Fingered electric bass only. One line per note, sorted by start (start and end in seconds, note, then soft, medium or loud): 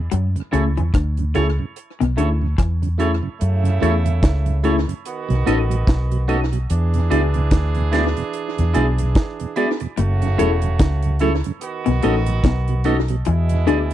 0.13 0.35 F#2 loud
0.54 0.76 C#2 medium
0.78 0.93 E2 medium
0.95 1.33 D2 medium
1.36 1.58 C#2 medium
2.01 2.17 B1 medium
2.19 2.56 D2 medium
2.59 3.20 E2 medium
3.42 3.80 F#2 loud
3.83 4.21 E2 medium
4.24 4.84 C#2 loud
5.30 5.45 B1 medium
5.47 5.85 A1 medium
5.88 6.66 B1 medium
6.71 7.08 E2 loud
7.12 7.49 C#2 medium
7.52 8.13 D2 medium
8.59 8.74 E2 medium
8.76 9.14 B1 loud
9.99 10.37 F#1 loud
10.40 10.78 E1 loud
10.80 11.41 C#2 loud
11.88 12.03 B1 medium
12.05 12.42 A1 loud
12.44 13.22 B1 medium
13.28 13.69 E2 loud
13.69 13.94 D2 medium